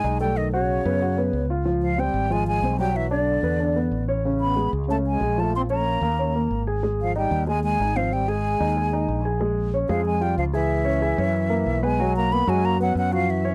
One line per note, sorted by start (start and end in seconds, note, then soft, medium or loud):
0.00 0.18 G#3 medium
0.00 0.17 D#4 medium
0.00 0.18 G#5 loud
0.04 0.79 B1 medium
0.04 0.17 D#5 medium
0.20 0.38 G3 medium
0.20 0.47 A3 medium
0.20 0.47 A4 medium
0.20 0.39 G5 medium
0.36 0.52 D#3 medium
0.36 0.52 D#5 medium
0.53 1.46 C#3 medium
0.53 0.80 F#4 medium
0.53 1.45 C#5 medium
0.53 0.80 F#5 medium
0.85 1.30 F#2 medium
0.85 0.98 B3 medium
0.85 0.99 B4 medium
1.02 1.15 F#4 medium
1.02 1.15 F#5 medium
1.18 1.44 B3 medium
1.18 1.44 B4 medium
1.33 2.08 C#2 medium
1.50 1.63 F4 medium
1.50 1.63 F5 medium
1.65 1.92 F3 medium
1.65 1.92 F4 medium
1.82 2.01 F3 medium
1.82 2.01 F5 medium
1.98 2.32 G3 medium
1.98 2.25 C4 medium
1.98 2.25 C5 medium
1.98 2.34 G5 medium
2.14 2.59 G#1 medium
2.30 2.57 F3 medium
2.30 2.47 G#3 medium
2.30 2.57 F4 medium
2.30 2.47 G#5 loud
2.47 2.77 G#3 medium
2.47 2.77 G#5 loud
2.62 3.38 B1 medium
2.62 2.76 C4 medium
2.62 2.76 C5 medium
2.79 3.05 F#3 medium
2.79 2.97 G3 medium
2.79 3.06 F#4 medium
2.79 2.98 G5 medium
2.95 3.10 E3 medium
2.95 3.10 E5 medium
3.11 4.04 D3 medium
3.11 3.37 D4 medium
3.11 4.04 D5 medium
3.11 3.38 D5 medium
3.43 3.88 E2 medium
3.43 3.56 B3 medium
3.43 3.57 B4 medium
3.60 3.73 D4 medium
3.60 3.73 D5 medium
3.76 4.02 B3 medium
3.76 4.02 B4 medium
3.91 4.67 A1 medium
4.08 4.21 C#4 medium
4.08 4.22 C#5 medium
4.25 4.51 C#3 medium
4.25 4.51 C#4 medium
4.41 4.71 B3 medium
4.41 4.71 B5 medium
4.56 4.83 G#3 medium
4.56 4.83 G#4 medium
4.73 5.18 C#2 medium
4.88 5.15 C#3 medium
4.88 4.98 A3 medium
4.88 5.15 C#4 medium
4.88 4.96 A5 medium
5.07 5.42 G#3 medium
5.07 5.41 G#5 medium
5.21 5.96 A#1 medium
5.21 5.34 G#3 medium
5.21 5.34 G#4 medium
5.38 5.64 F3 medium
5.38 5.55 A3 medium
5.38 5.64 F4 medium
5.38 5.55 A5 medium
5.56 5.64 C4 medium
5.56 5.62 C6 medium
5.70 6.64 A#3 medium
5.70 5.96 C#4 medium
5.70 5.96 C#5 medium
5.70 6.63 A#5 medium
6.01 6.47 D#2 medium
6.01 6.16 A#3 medium
6.01 6.16 A#4 medium
6.19 6.32 C#4 medium
6.19 6.32 C#5 medium
6.35 6.61 A#3 medium
6.35 6.62 A#4 medium
6.51 7.26 G#1 medium
6.67 6.80 G#4 medium
6.67 6.80 G#5 medium
6.83 7.09 G#3 medium
6.83 7.10 G#4 medium
7.02 7.16 F3 medium
7.02 7.15 F5 medium
7.16 7.46 G3 medium
7.16 7.42 D#4 medium
7.16 7.42 D#5 medium
7.16 7.46 G5 medium
7.31 7.76 D#2 medium
7.47 7.74 G#3 medium
7.47 7.62 G#3 medium
7.47 7.74 G#4 medium
7.47 7.63 G#5 loud
7.63 7.97 G#3 medium
7.63 7.98 G#5 loud
7.80 8.55 G#1 medium
7.80 7.93 D#4 medium
7.80 7.93 D#5 medium
7.96 8.14 F3 medium
7.96 8.23 C4 medium
7.96 8.23 C5 medium
7.96 8.15 F5 medium
8.12 8.30 G3 medium
8.12 8.30 G5 medium
8.28 9.25 G#3 medium
8.28 8.55 G#4 medium
8.28 8.55 G#5 medium
8.28 9.25 G#5 loud
8.60 9.05 D#2 medium
8.60 8.73 D#4 medium
8.60 8.74 D#5 medium
8.76 8.90 G#4 medium
8.76 8.90 G#5 medium
8.93 9.19 D#4 medium
8.93 9.20 D#5 medium
9.08 9.84 A#1 medium
9.25 9.38 G#4 medium
9.25 9.38 G#5 medium
9.41 9.67 G#3 medium
9.41 9.67 G#4 medium
9.74 9.87 C#4 medium
9.74 9.87 C#5 medium
9.89 10.34 F2 medium
9.89 10.04 F3 medium
9.89 10.16 G#3 medium
9.89 10.16 G#4 medium
9.89 10.04 F5 medium
10.05 10.23 G#3 medium
10.05 10.23 G#5 medium
10.21 10.37 G3 medium
10.21 10.48 F4 medium
10.21 10.48 F5 medium
10.21 10.38 G5 medium
10.37 11.13 C#2 medium
10.37 10.45 F3 medium
10.37 10.44 F5 medium
10.53 11.85 E3 medium
10.53 10.80 G#4 medium
10.53 11.85 E5 medium
10.53 10.80 G#5 medium
10.85 10.99 C#4 medium
10.85 10.99 C#5 medium
11.02 11.15 G#4 medium
11.02 11.16 G#5 medium
11.18 11.63 F#2 medium
11.18 11.44 C#4 medium
11.18 11.45 C#5 medium
11.49 11.76 A#3 medium
11.49 11.77 A#4 medium
11.66 12.42 B1 medium
11.83 12.15 G#3 medium
11.83 11.96 B3 medium
11.83 11.96 B4 medium
11.83 12.16 G#5 medium
12.00 12.26 F#3 medium
12.00 12.26 F#4 medium
12.16 12.34 A#3 medium
12.16 12.34 A#5 medium
12.31 12.45 A#3 medium
12.31 12.51 B3 medium
12.31 12.45 A#4 medium
12.31 12.51 B5 loud
12.47 12.93 F#2 medium
12.47 12.74 F#3 medium
12.47 12.66 G#3 medium
12.47 12.74 F#4 medium
12.47 12.67 G#5 medium
12.64 12.80 A#3 medium
12.64 12.81 A#5 loud
12.80 12.95 F#3 medium
12.80 13.07 B3 medium
12.80 13.07 B4 medium
12.80 12.96 F#5 medium
12.95 13.55 F#2 medium
12.95 13.12 F#3 medium
12.95 13.12 F#5 medium
13.13 13.31 F3 medium
13.13 13.39 F#4 medium
13.13 13.32 F5 medium
13.13 13.39 F#5 medium
13.30 13.55 E3 medium
13.30 13.55 E5 medium
13.44 13.55 C#4 medium
13.44 13.55 C#5 medium